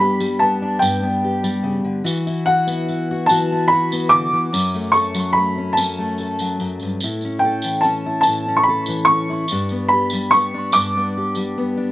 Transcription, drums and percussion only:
0.20 tambourine medium
0.82 tambourine loud
1.44 tambourine medium
2.06 tambourine loud
2.27 tambourine soft
2.68 tambourine medium
2.88 tambourine soft
3.29 tambourine loud
3.92 tambourine medium
4.54 tambourine loud
4.74 tambourine soft
4.94 tambourine soft
5.14 tambourine medium
5.77 tambourine loud
6.18 tambourine soft
6.39 tambourine medium
6.60 tambourine soft
6.80 tambourine soft
7.00 tambourine loud
7.21 tambourine soft
7.62 tambourine medium
7.83 tambourine soft
8.23 tambourine loud
8.86 tambourine medium
9.48 tambourine loud
9.69 tambourine soft
10.10 tambourine medium
10.31 tambourine soft
10.72 tambourine loud
11.35 tambourine medium

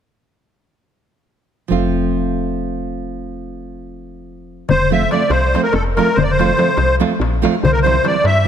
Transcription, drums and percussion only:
4.69 darbuka dum medium
5.02 darbuka tek soft
5.11 darbuka tek medium
5.31 darbuka tek medium
5.44 darbuka tek soft
5.55 darbuka tek medium
5.73 darbuka tek medium
5.86 darbuka tek soft
5.97 darbuka tek medium
6.08 darbuka tek soft
6.18 darbuka dum medium
6.39 darbuka tek medium
6.50 darbuka tek soft
6.59 darbuka tek medium
6.77 darbuka tek medium
6.90 darbuka tek soft
7.02 darbuka tek medium
7.21 darbuka tek medium
7.33 darbuka tek soft
7.45 darbuka tek medium
7.55 darbuka tek soft
7.65 darbuka dum medium
7.86 darbuka tek medium
7.97 darbuka tek soft
8.05 darbuka tek medium
8.25 darbuka tek medium
8.36 darbuka tek soft

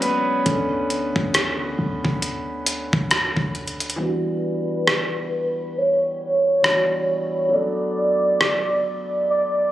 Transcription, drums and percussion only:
0.02 closed hi-hat medium
0.46 kick loud
0.46 closed hi-hat medium
0.90 closed hi-hat medium
1.16 kick medium
1.34 cross-stick loud
1.34 closed hi-hat medium
2.05 kick medium
2.22 closed hi-hat medium
2.66 closed hi-hat medium
2.93 kick loud
3.11 cross-stick loud
3.11 closed hi-hat medium
3.37 kick medium
3.55 closed hi-hat soft
3.67 closed hi-hat soft
3.80 closed hi-hat medium
3.90 closed hi-hat medium
4.88 cross-stick loud
6.64 cross-stick loud
8.41 cross-stick medium

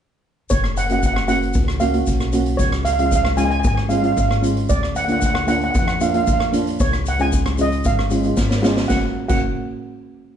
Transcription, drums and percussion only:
0.50 kick loud
0.50 closed hi-hat medium
0.50 shaker medium
0.64 cross-stick medium
0.77 closed hi-hat medium
0.77 shaker medium
0.90 closed hi-hat medium
0.90 shaker soft
1.03 kick medium
1.03 closed hi-hat medium
1.03 shaker medium
1.16 cross-stick medium
1.28 closed hi-hat medium
1.28 shaker medium
1.42 closed hi-hat soft
1.53 kick loud
1.53 closed hi-hat medium
1.53 shaker medium
1.68 cross-stick medium
1.80 closed hi-hat medium
1.80 shaker medium
1.94 closed hi-hat medium
2.06 kick medium
2.06 closed hi-hat medium
2.06 shaker medium
2.20 cross-stick medium
2.20 shaker soft
2.33 closed hi-hat medium
2.33 shaker medium
2.46 closed hi-hat medium
2.59 kick medium
2.59 closed hi-hat medium
2.59 shaker medium
2.72 cross-stick medium
2.85 closed hi-hat medium
2.85 shaker medium
2.99 closed hi-hat medium
2.99 shaker soft
3.12 kick medium
3.12 closed hi-hat medium
3.12 shaker loud
3.25 cross-stick medium
3.37 closed hi-hat medium
3.37 shaker medium
3.51 closed hi-hat soft
3.64 kick loud
3.64 closed hi-hat medium
3.64 shaker medium
3.77 cross-stick medium
3.90 closed hi-hat medium
3.90 shaker medium
4.04 closed hi-hat medium
4.17 kick medium
4.17 closed hi-hat medium
4.17 shaker medium
4.31 cross-stick medium
4.43 closed hi-hat medium
4.43 shaker medium
4.57 closed hi-hat medium
4.69 kick medium
4.69 closed hi-hat medium
4.69 shaker medium
4.83 cross-stick medium
4.96 closed hi-hat medium
4.96 shaker medium
5.08 closed hi-hat medium
5.08 shaker soft
5.21 kick medium
5.21 closed hi-hat medium
5.21 shaker loud
5.35 cross-stick medium
5.48 closed hi-hat medium
5.48 shaker medium
5.61 closed hi-hat soft
5.74 kick loud
5.74 closed hi-hat medium
5.74 shaker medium
5.88 cross-stick medium
6.01 closed hi-hat medium
6.01 shaker medium
6.14 closed hi-hat medium
6.27 kick medium
6.27 closed hi-hat medium
6.27 shaker medium
6.40 cross-stick medium
6.53 closed hi-hat medium
6.53 shaker medium
6.67 closed hi-hat medium
6.80 kick loud
6.80 closed hi-hat medium
6.80 shaker medium
6.93 cross-stick medium
6.93 shaker soft
7.06 closed hi-hat medium
7.06 shaker medium
7.19 closed hi-hat medium
7.19 shaker soft
7.32 kick medium
7.32 closed hi-hat medium
7.32 shaker loud
7.45 cross-stick medium
7.45 shaker soft
7.58 closed hi-hat medium
7.58 shaker medium
7.72 closed hi-hat soft
7.72 shaker soft
7.84 kick loud
7.84 closed hi-hat medium
7.84 shaker medium
7.99 cross-stick medium
8.10 closed hi-hat medium
8.10 shaker medium
8.23 closed hi-hat soft
8.23 shaker soft
8.37 kick medium
8.37 snare medium
8.37 shaker medium
8.50 snare medium
8.50 shaker soft
8.64 snare medium
8.64 shaker medium
8.77 snare medium
8.77 shaker soft
8.89 kick loud
8.89 snare medium
8.89 shaker medium
9.29 kick medium
9.29 crash medium
9.29 shaker medium

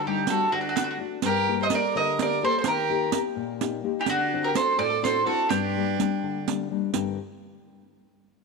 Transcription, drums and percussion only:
0.27 riq medium
0.77 riq medium
1.22 riq medium
1.70 riq medium
2.19 riq medium
2.64 riq medium
3.12 riq medium
3.61 riq medium
4.06 riq medium
4.55 riq medium
5.05 riq medium
5.50 riq medium
6.00 riq medium
6.48 riq medium
6.94 riq medium

